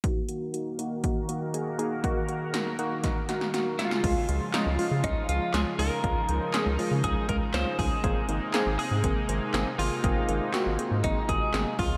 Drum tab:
CC |----------------|----------------|x---------------|----------------|
HH |x-x-x-x-x-x-x-x-|x-x-x-x-x-x-x-x-|x-x-x-o-x-x-x-o-|x-x-x-o-x-x-x-o-|
CP |----------------|----------------|----x-------x---|----x-------x---|
SD |----------------|----o---o-ooo-oo|----o-------o---|----o-------o---|
BD |o-------o-------|o-------o-------|o-------o-------|o-------o-o---o-|

CC |----------------|----------------|
HH |x-x-x-o-x-x-x-o-|x-x-x-x-x-x-x-o-|
CP |----x-------x---|----x-------x---|
SD |----o-------o---|----o-------o---|
BD |o-------o-------|o-------o-o---o-|